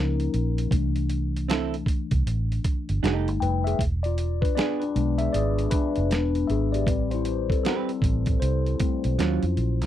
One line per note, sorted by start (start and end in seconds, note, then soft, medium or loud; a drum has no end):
0.00 0.27 C#2 medium
0.00 0.68 F3 medium
0.00 0.68 A#3 soft
0.00 0.30 C#4 medium
0.00 0.69 D#4 medium
0.00 0.29 A#4 medium
0.20 closed hi-hat soft
0.34 0.66 A#1 medium
0.34 closed hi-hat soft
0.58 closed hi-hat soft
0.71 1.83 C2 medium
0.71 2.98 E3 soft
0.71 2.99 A3 soft
0.71 2.99 D4 medium
0.71 kick medium
0.71 closed hi-hat medium
0.96 closed hi-hat soft
1.10 closed hi-hat medium
1.36 closed hi-hat soft
1.49 1.74 C4 medium
1.49 1.75 E4 medium
1.49 1.75 A4 medium
1.49 snare loud
1.49 closed hi-hat medium
1.74 closed hi-hat soft
1.86 muted fingered electric bass stroke soft
1.86 kick medium
1.86 closed hi-hat medium
2.11 2.23 C2 medium
2.11 kick medium
2.11 closed hi-hat soft
2.26 2.58 A1 medium
2.26 closed hi-hat medium
2.52 closed hi-hat soft
2.64 kick medium
2.64 closed hi-hat medium
2.89 3.01 G1 medium
2.89 closed hi-hat soft
3.02 3.28 F1 medium
3.02 3.58 G3 medium
3.02 3.58 A3 soft
3.02 3.14 D4 medium
3.02 3.58 D#4 medium
3.02 3.15 F#4 medium
3.02 3.29 A4 medium
3.02 snare medium
3.02 closed hi-hat medium
3.14 3.28 D#4 medium
3.14 3.29 G4 medium
3.28 3.39 G1 medium
3.28 closed hi-hat soft
3.40 3.74 F1 medium
3.40 3.64 B4 medium
3.40 3.66 G5 medium
3.40 closed hi-hat soft
3.64 3.84 G#4 medium
3.64 3.82 E5 medium
3.64 closed hi-hat soft
3.79 4.44 E1 medium
3.79 kick medium
3.79 closed hi-hat medium
4.03 4.41 F4 medium
4.03 4.43 D5 medium
4.03 closed hi-hat soft
4.18 closed hi-hat medium
4.42 4.56 D4 medium
4.42 4.55 B4 medium
4.42 kick medium
4.42 closed hi-hat soft
4.55 4.82 B3 medium
4.55 4.83 D4 medium
4.55 4.80 G#4 medium
4.55 4.83 G#4 medium
4.55 4.81 D5 medium
4.55 snare loud
4.55 closed hi-hat soft
4.80 4.95 D4 medium
4.80 5.20 B4 medium
4.80 closed hi-hat soft
4.95 5.28 B1 medium
4.95 6.06 G#3 soft
4.95 6.06 B3 soft
4.95 5.72 D4 medium
4.95 closed hi-hat medium
5.18 5.33 G#4 medium
5.18 5.33 E5 medium
5.18 closed hi-hat soft
5.32 5.66 G#1 medium
5.32 5.70 G#4 medium
5.32 5.72 D5 medium
5.32 closed hi-hat medium
5.59 closed hi-hat soft
5.71 6.11 D4 medium
5.71 6.50 B4 medium
5.71 kick medium
5.71 closed hi-hat medium
5.96 6.11 F1 medium
5.96 closed hi-hat soft
6.11 6.43 E1 medium
6.11 6.66 G#3 soft
6.11 6.66 B3 soft
6.11 6.66 D4 medium
6.11 snare medium
6.11 closed hi-hat medium
6.35 closed hi-hat soft
6.47 6.87 G#1 medium
6.47 6.72 G#4 medium
6.47 6.73 E5 medium
6.47 closed hi-hat soft
6.72 7.10 G4 medium
6.72 7.12 D5 medium
6.72 closed hi-hat soft
6.87 7.52 A1 medium
6.87 8.78 G3 medium
6.87 7.51 C4 medium
6.87 9.14 B4 soft
6.87 kick medium
6.87 closed hi-hat medium
7.11 7.49 E4 medium
7.11 7.51 C5 medium
7.11 closed hi-hat soft
7.25 closed hi-hat medium
7.50 7.64 C4 medium
7.50 7.62 A4 medium
7.50 kick medium
7.50 closed hi-hat soft
7.63 7.76 B3 medium
7.63 8.38 C4 medium
7.63 7.91 G4 medium
7.63 8.37 A4 medium
7.63 7.91 B4 medium
7.63 snare loud
7.63 closed hi-hat medium
7.76 7.90 C4 medium
7.89 closed hi-hat soft
8.02 8.35 A1 medium
8.02 kick medium
8.02 closed hi-hat medium
8.26 kick medium
8.26 closed hi-hat medium
8.40 8.74 C2 medium
8.40 9.53 E4 medium
8.40 9.52 C5 medium
8.40 closed hi-hat medium
8.66 closed hi-hat soft
8.80 9.14 G3 soft
8.80 9.14 A3 soft
8.80 9.14 C4 soft
8.80 muted fingered electric bass stroke soft
8.80 kick medium
8.80 closed hi-hat medium
9.04 9.16 B1 medium
9.04 closed hi-hat soft
9.19 9.39 D#2 medium
9.19 9.44 F#3 medium
9.19 9.86 F#3 soft
9.19 9.86 C#4 soft
9.19 9.44 C#4 medium
9.19 9.86 F4 medium
9.19 9.45 F4 medium
9.19 snare medium
9.19 closed hi-hat medium
9.43 9.54 F2 medium
9.43 closed hi-hat soft
9.57 9.81 A#1 medium
9.57 closed hi-hat soft
9.81 9.86 C2 medium
9.81 closed hi-hat soft